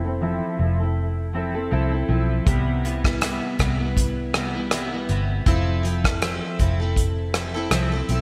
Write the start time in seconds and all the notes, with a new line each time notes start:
Already playing: F1
0.04 C4 E4 A4
0.21 F3 C4 E4 A4
0.58 F1 F3 C4 E4 A4
0.80 C4 E4 A4
1.33 F3 C4 E4 A4
1.54 C4 E4 A4
1.71 C2 F3 C4 E4 A4
1.92 C4 E4 A4
2.08 B1 F3 C4 E4 A4
2.46 C2 C3 G3 B3 E4, kick, closed hi-hat
2.83 C3 G3 B3 E4, closed hi-hat
3.04 G3 B3 E4, kick, cross-stick
3.21 C3 G3 B3 E4, cross-stick, closed hi-hat
3.58 C2 C3 G3 B3 E4, kick, cross-stick, closed hi-hat
3.79 G3 B3 E4
3.97 kick, closed hi-hat
4.33 C3 G3 B3 E4, cross-stick, closed hi-hat
4.55 G3 B3 E4
4.71 C3 G3 B3 E4, cross-stick, closed hi-hat
4.92 G3 B3 E4
5.09 G1 C3 G3 B3 E4, closed hi-hat
5.46 F1 F3 C4 E4 A4, kick, closed hi-hat
5.83 F3 C4 E4 A4, closed hi-hat
6.04 C4 E4 A4, kick, cross-stick
6.22 F3 C4 E4 A4, cross-stick, closed hi-hat
6.59 F1 F3 C4 E4 A4, kick, closed hi-hat
6.80 C4 E4 A4
6.96 kick, closed hi-hat
7.34 F3 C4 E4 A4, cross-stick, closed hi-hat
7.54 C4 E4 A4
7.71 C2 F3 C4 E4 A4, cross-stick, closed hi-hat
7.92 C4 E4 A4
8.09 B1 F3 C4 E4 A4, closed hi-hat